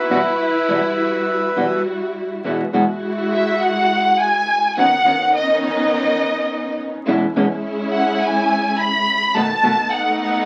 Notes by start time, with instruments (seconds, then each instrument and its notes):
Already playing: violin section E4, bandoneon B4 E5
0.10 nylon-string guitar E2 B2 E3 G3 B3 F#4, string section G3 E4 F#4
0.68 nylon-string guitar E2 B2 E3 G3 B3 F#4, string section G3 E4 F#4
1.56 nylon-string guitar E2 B2 E3 G3 B3 F#4, string section G3 E4 F#4
2.44 nylon-string guitar E2 B2 E3 G#3 B3 F#4, string section G#3 E4 F#4
2.73 nylon-string guitar E2 B2 E3 G#3 B3 F#4, string section G#3 E4 F#4
3.33 violin section E5
3.62 violin section F#5
4.20 violin section G#5
4.77 nylon-string guitar D#3 B3 C#4 F#4, string section D#3 B3 C#4 D#4, violin section F#5
5.05 nylon-string guitar D#3 B3 C#4 F#4, string section D#3 B3 C#4 D#4
5.36 violin section D#5
5.65 violin section D#5
7.06 nylon-string guitar E2 B2 E3 G#3 C#4 E4, string section G#3 C#4 E4
7.35 nylon-string guitar E2 B2 E3 G#3 C#4 E4, string section G#3 C#4 E4
7.92 violin section F#5
8.20 violin section G#5
8.78 violin section B5
9.34 nylon-string guitar B2 D#3 A3 B3 F#4, string section A3 B3 D#4, violin section A5
9.63 nylon-string guitar B2 D#3 A3 B3 F#4, string section A3 B3 D#4
9.92 violin section F#5
10.20 violin section F#5